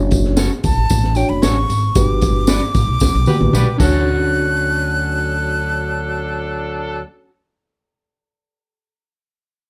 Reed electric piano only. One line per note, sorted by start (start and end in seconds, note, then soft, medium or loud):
0.00 0.40 D4 medium
0.00 0.41 F#4 medium
0.00 0.40 C#5 loud
1.16 1.58 D4 medium
1.16 1.58 F#4 medium
1.16 1.58 C#5 medium
1.96 2.51 F#4 medium
1.96 2.51 G4 medium
1.96 2.51 B4 medium
3.28 3.69 F#4 medium
3.28 3.69 G4 medium
3.28 3.69 B4 medium
3.78 7.00 D4 medium
3.78 7.02 F#4 medium
3.82 7.04 C#5 medium